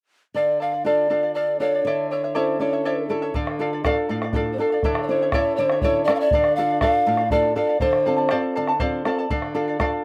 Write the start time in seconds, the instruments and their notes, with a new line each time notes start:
0.34 nylon-string guitar D3, charango A4 D5 F5, pan flute D5
0.60 charango A4 D5 F5, pan flute F5
0.72 charango D5 F5
0.85 nylon-string guitar D4 F4 A4, charango A4 D5 F5, pan flute D5
1.10 nylon-string guitar D4 F4 A4, charango A4 D5 F5
1.23 charango D5 F5
1.34 charango A4 D5 F5, pan flute D5
1.59 nylon-string guitar D4 F4 A4, charango A4 D5 F5, pan flute C#5
1.74 charango D5 F5
1.85 nylon-string guitar D3, charango E4 A4 C#5 D5 E5
2.10 charango E4 C#5 D5 E5, pan flute C#5
2.24 charango E4 C#5 E5
2.35 nylon-string guitar C#4 E4 A4, charango E4 A4 C#5 D5 E5, pan flute C5
2.60 nylon-string guitar C#4 E4 A4, charango E4 C#5 D5 E5, pan flute C#5
2.73 charango E4 C#5 E5
2.85 charango E4 A4 C#5 D5 E5
3.09 nylon-string guitar C#4 E4 A4, charango E4 C#5 D5 E5
3.22 charango E4 C#5 E5
3.34 nylon-string guitar D3, charango A4 D5 F5, bombo rim, bombo low
3.47 bombo rim
3.59 nylon-string guitar D4 F4 A4, charango A4 D5 F5
3.73 charango D5 F5
3.84 nylon-string guitar D4 F4 A4, charango A4 D5 F5, bombo rim, bombo low
4.09 nylon-string guitar A2, charango A4 D5 F5, bombo rim
4.22 charango D5 F5, bombo rim
4.33 nylon-string guitar D4 F4 A4, pan flute A4, charango A4 D5 F5, bombo rim, bombo low
4.46 bombo rim
4.53 pan flute C5
4.58 nylon-string guitar D4 F4 A4, pan flute A4, charango A4 D5 F5
4.70 charango D5 F5, bombo rim
4.83 nylon-string guitar D3, charango E4 A4 C#5 D5 E5, bombo rim, bombo low
4.95 bombo rim
5.03 pan flute C#5
5.08 nylon-string guitar C#4 E4 A4, charango E4 C#5 D5, pan flute C5
5.12 charango E5
5.22 charango E4 C#5 E5
5.32 nylon-string guitar C#4 E4 A4, charango E4 A4 C#5 D5 E5, pan flute C#5, bombo rim, bombo low
5.56 nylon-string guitar D3, pan flute C5, charango D5, bombo rim
5.60 charango E4 C#5 E5
5.70 charango E4 C#5 E5, bombo rim
5.81 nylon-string guitar C#4 E4 A4, charango E4 A4 C#5 D5 E5, pan flute C#5, bombo rim, bombo low
5.94 bombo rim
6.04 nylon-string guitar C#4, pan flute D5, bombo rim
6.08 nylon-string guitar E4 A4, charango E4 C#5 D5 E5
6.15 pan flute F5
6.19 charango E4 C#5 E5, pan flute D5, bombo rim
6.31 nylon-string guitar D3, charango A4 F5, bombo rim, bombo low
6.35 charango D5
6.44 bombo rim
6.56 nylon-string guitar D4 F4 A4, charango A4 D5, pan flute F5
6.60 charango F5
6.70 charango D5 F5
6.81 nylon-string guitar D4 F4 A4, charango A4 D5 F5, pan flute F5, bombo rim, bombo low
7.07 nylon-string guitar A2, charango A4 D5 F5, bombo rim
7.17 charango D5 F5, bombo rim
7.30 nylon-string guitar D4 F4 A4, charango A4 D5 F5, pan flute D5, bombo rim, bombo low
7.43 bombo rim
7.56 nylon-string guitar D4 F4 A4, charango A4 D5 F5, pan flute D5
7.69 charango D5 F5
7.80 nylon-string guitar D3, charango A4 C5 D5 F5 A5, pan flute C5, bombo low
7.93 bombo rim
8.06 nylon-string guitar C4 F4 A4, charango A4 D5 F5 A5
8.17 charango A4 D5 A5, bombo rim
8.29 nylon-string guitar C4 F4 A4, charango A4 C5 D5 F5 A5, bombo rim
8.54 nylon-string guitar D3, charango A4 D5 F5 A5, bombo rim
8.67 charango A4 D5 A5, bombo rim
8.80 nylon-string guitar C4 F4 A4, charango A4 C5 D5 F5 A5, bombo low
8.92 bombo rim
9.05 nylon-string guitar C4 F4 A4, charango A4 D5 F5 A5, bombo rim
9.19 charango A4 D5 A5
9.30 nylon-string guitar D3, charango A4 D5 F5, bombo rim, bombo low
9.42 bombo rim
9.55 nylon-string guitar D4 F4 A4, charango A4 D5 F5
9.68 charango D5 F5
9.79 nylon-string guitar D4 F4 A4, charango A4 D5 F5, bombo rim, bombo low